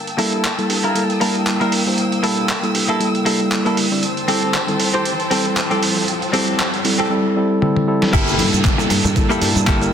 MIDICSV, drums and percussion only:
0, 0, Header, 1, 2, 480
1, 0, Start_track
1, 0, Tempo, 512821
1, 1853, Time_signature, 4, 2, 24, 8
1, 9296, End_track
2, 0, Start_track
2, 0, Title_t, "Drums"
2, 69, Note_on_c, 9, 42, 37
2, 163, Note_off_c, 9, 42, 0
2, 174, Note_on_c, 9, 46, 96
2, 268, Note_off_c, 9, 46, 0
2, 308, Note_on_c, 9, 42, 38
2, 402, Note_off_c, 9, 42, 0
2, 415, Note_on_c, 9, 42, 91
2, 417, Note_on_c, 9, 39, 117
2, 509, Note_off_c, 9, 42, 0
2, 510, Note_off_c, 9, 39, 0
2, 549, Note_on_c, 9, 42, 37
2, 642, Note_off_c, 9, 42, 0
2, 654, Note_on_c, 9, 46, 86
2, 747, Note_off_c, 9, 46, 0
2, 788, Note_on_c, 9, 42, 40
2, 882, Note_off_c, 9, 42, 0
2, 895, Note_on_c, 9, 42, 91
2, 988, Note_off_c, 9, 42, 0
2, 1028, Note_on_c, 9, 42, 37
2, 1122, Note_off_c, 9, 42, 0
2, 1134, Note_on_c, 9, 46, 101
2, 1227, Note_off_c, 9, 46, 0
2, 1267, Note_on_c, 9, 42, 39
2, 1361, Note_off_c, 9, 42, 0
2, 1373, Note_on_c, 9, 42, 88
2, 1374, Note_on_c, 9, 39, 115
2, 1467, Note_off_c, 9, 42, 0
2, 1468, Note_off_c, 9, 39, 0
2, 1506, Note_on_c, 9, 42, 40
2, 1600, Note_off_c, 9, 42, 0
2, 1611, Note_on_c, 9, 46, 87
2, 1705, Note_off_c, 9, 46, 0
2, 1851, Note_on_c, 9, 42, 88
2, 1945, Note_off_c, 9, 42, 0
2, 1987, Note_on_c, 9, 42, 39
2, 2080, Note_off_c, 9, 42, 0
2, 2093, Note_on_c, 9, 46, 105
2, 2186, Note_off_c, 9, 46, 0
2, 2226, Note_on_c, 9, 42, 38
2, 2319, Note_off_c, 9, 42, 0
2, 2330, Note_on_c, 9, 42, 91
2, 2332, Note_on_c, 9, 39, 118
2, 2424, Note_off_c, 9, 42, 0
2, 2425, Note_off_c, 9, 39, 0
2, 2467, Note_on_c, 9, 42, 37
2, 2560, Note_off_c, 9, 42, 0
2, 2572, Note_on_c, 9, 46, 94
2, 2666, Note_off_c, 9, 46, 0
2, 2707, Note_on_c, 9, 42, 38
2, 2801, Note_off_c, 9, 42, 0
2, 2813, Note_on_c, 9, 42, 89
2, 2906, Note_off_c, 9, 42, 0
2, 2947, Note_on_c, 9, 42, 36
2, 3040, Note_off_c, 9, 42, 0
2, 3052, Note_on_c, 9, 46, 107
2, 3146, Note_off_c, 9, 46, 0
2, 3184, Note_on_c, 9, 42, 39
2, 3278, Note_off_c, 9, 42, 0
2, 3291, Note_on_c, 9, 42, 92
2, 3293, Note_on_c, 9, 39, 118
2, 3385, Note_off_c, 9, 42, 0
2, 3386, Note_off_c, 9, 39, 0
2, 3425, Note_on_c, 9, 42, 39
2, 3519, Note_off_c, 9, 42, 0
2, 3531, Note_on_c, 9, 46, 97
2, 3625, Note_off_c, 9, 46, 0
2, 3770, Note_on_c, 9, 42, 89
2, 3864, Note_off_c, 9, 42, 0
2, 3905, Note_on_c, 9, 42, 38
2, 3999, Note_off_c, 9, 42, 0
2, 4009, Note_on_c, 9, 46, 104
2, 4103, Note_off_c, 9, 46, 0
2, 4144, Note_on_c, 9, 42, 37
2, 4238, Note_off_c, 9, 42, 0
2, 4249, Note_on_c, 9, 42, 88
2, 4251, Note_on_c, 9, 39, 117
2, 4343, Note_off_c, 9, 42, 0
2, 4344, Note_off_c, 9, 39, 0
2, 4384, Note_on_c, 9, 42, 36
2, 4477, Note_off_c, 9, 42, 0
2, 4489, Note_on_c, 9, 46, 95
2, 4582, Note_off_c, 9, 46, 0
2, 4625, Note_on_c, 9, 42, 39
2, 4719, Note_off_c, 9, 42, 0
2, 4731, Note_on_c, 9, 42, 90
2, 4824, Note_off_c, 9, 42, 0
2, 4865, Note_on_c, 9, 42, 38
2, 4958, Note_off_c, 9, 42, 0
2, 4971, Note_on_c, 9, 46, 112
2, 5065, Note_off_c, 9, 46, 0
2, 5106, Note_on_c, 9, 42, 37
2, 5200, Note_off_c, 9, 42, 0
2, 5212, Note_on_c, 9, 42, 86
2, 5213, Note_on_c, 9, 39, 118
2, 5306, Note_off_c, 9, 42, 0
2, 5307, Note_off_c, 9, 39, 0
2, 5345, Note_on_c, 9, 42, 39
2, 5439, Note_off_c, 9, 42, 0
2, 5453, Note_on_c, 9, 46, 98
2, 5546, Note_off_c, 9, 46, 0
2, 5692, Note_on_c, 9, 42, 88
2, 5785, Note_off_c, 9, 42, 0
2, 5824, Note_on_c, 9, 42, 37
2, 5917, Note_off_c, 9, 42, 0
2, 5930, Note_on_c, 9, 46, 107
2, 6024, Note_off_c, 9, 46, 0
2, 6172, Note_on_c, 9, 42, 89
2, 6173, Note_on_c, 9, 39, 121
2, 6265, Note_off_c, 9, 42, 0
2, 6267, Note_off_c, 9, 39, 0
2, 6305, Note_on_c, 9, 42, 37
2, 6399, Note_off_c, 9, 42, 0
2, 6409, Note_on_c, 9, 46, 96
2, 6503, Note_off_c, 9, 46, 0
2, 7133, Note_on_c, 9, 48, 62
2, 7227, Note_off_c, 9, 48, 0
2, 7268, Note_on_c, 9, 48, 65
2, 7362, Note_off_c, 9, 48, 0
2, 7507, Note_on_c, 9, 38, 85
2, 7601, Note_off_c, 9, 38, 0
2, 7614, Note_on_c, 9, 36, 120
2, 7614, Note_on_c, 9, 42, 97
2, 7614, Note_on_c, 9, 49, 102
2, 7617, Note_on_c, 9, 82, 51
2, 7621, Note_off_c, 9, 82, 0
2, 7621, Note_on_c, 9, 82, 56
2, 7707, Note_off_c, 9, 36, 0
2, 7707, Note_off_c, 9, 42, 0
2, 7707, Note_off_c, 9, 49, 0
2, 7714, Note_off_c, 9, 82, 0
2, 7746, Note_on_c, 9, 82, 41
2, 7747, Note_on_c, 9, 42, 40
2, 7754, Note_off_c, 9, 82, 0
2, 7754, Note_on_c, 9, 82, 34
2, 7841, Note_off_c, 9, 42, 0
2, 7848, Note_off_c, 9, 82, 0
2, 7852, Note_on_c, 9, 82, 87
2, 7853, Note_on_c, 9, 46, 103
2, 7946, Note_off_c, 9, 46, 0
2, 7946, Note_off_c, 9, 82, 0
2, 7982, Note_on_c, 9, 82, 41
2, 7986, Note_on_c, 9, 42, 41
2, 7993, Note_off_c, 9, 82, 0
2, 7993, Note_on_c, 9, 82, 67
2, 8080, Note_off_c, 9, 42, 0
2, 8087, Note_off_c, 9, 82, 0
2, 8093, Note_on_c, 9, 42, 99
2, 8094, Note_on_c, 9, 36, 120
2, 8094, Note_on_c, 9, 39, 124
2, 8100, Note_on_c, 9, 82, 50
2, 8186, Note_off_c, 9, 42, 0
2, 8188, Note_off_c, 9, 36, 0
2, 8188, Note_off_c, 9, 39, 0
2, 8193, Note_off_c, 9, 82, 0
2, 8228, Note_on_c, 9, 42, 41
2, 8228, Note_on_c, 9, 82, 39
2, 8235, Note_off_c, 9, 82, 0
2, 8235, Note_on_c, 9, 82, 33
2, 8322, Note_off_c, 9, 42, 0
2, 8329, Note_off_c, 9, 82, 0
2, 8332, Note_on_c, 9, 46, 93
2, 8333, Note_on_c, 9, 82, 88
2, 8425, Note_off_c, 9, 46, 0
2, 8427, Note_off_c, 9, 82, 0
2, 8466, Note_on_c, 9, 42, 42
2, 8469, Note_on_c, 9, 64, 82
2, 8471, Note_on_c, 9, 82, 38
2, 8473, Note_off_c, 9, 82, 0
2, 8473, Note_on_c, 9, 82, 71
2, 8560, Note_off_c, 9, 42, 0
2, 8563, Note_off_c, 9, 64, 0
2, 8566, Note_off_c, 9, 82, 0
2, 8571, Note_on_c, 9, 82, 50
2, 8573, Note_on_c, 9, 42, 98
2, 8574, Note_on_c, 9, 36, 122
2, 8580, Note_off_c, 9, 82, 0
2, 8580, Note_on_c, 9, 82, 55
2, 8667, Note_off_c, 9, 42, 0
2, 8668, Note_off_c, 9, 36, 0
2, 8674, Note_off_c, 9, 82, 0
2, 8707, Note_on_c, 9, 42, 40
2, 8707, Note_on_c, 9, 82, 38
2, 8714, Note_off_c, 9, 82, 0
2, 8714, Note_on_c, 9, 82, 33
2, 8801, Note_off_c, 9, 42, 0
2, 8808, Note_off_c, 9, 82, 0
2, 8813, Note_on_c, 9, 46, 109
2, 8818, Note_on_c, 9, 82, 98
2, 8906, Note_off_c, 9, 46, 0
2, 8912, Note_off_c, 9, 82, 0
2, 8943, Note_on_c, 9, 82, 42
2, 8947, Note_on_c, 9, 42, 42
2, 8949, Note_on_c, 9, 64, 76
2, 8954, Note_off_c, 9, 82, 0
2, 8954, Note_on_c, 9, 82, 67
2, 9041, Note_off_c, 9, 42, 0
2, 9043, Note_off_c, 9, 64, 0
2, 9048, Note_off_c, 9, 82, 0
2, 9051, Note_on_c, 9, 42, 97
2, 9053, Note_on_c, 9, 39, 125
2, 9054, Note_on_c, 9, 36, 122
2, 9057, Note_on_c, 9, 82, 58
2, 9058, Note_off_c, 9, 82, 0
2, 9058, Note_on_c, 9, 82, 56
2, 9145, Note_off_c, 9, 42, 0
2, 9146, Note_off_c, 9, 39, 0
2, 9148, Note_off_c, 9, 36, 0
2, 9152, Note_off_c, 9, 82, 0
2, 9186, Note_on_c, 9, 42, 43
2, 9193, Note_on_c, 9, 82, 34
2, 9280, Note_off_c, 9, 42, 0
2, 9287, Note_off_c, 9, 82, 0
2, 9296, End_track
0, 0, End_of_file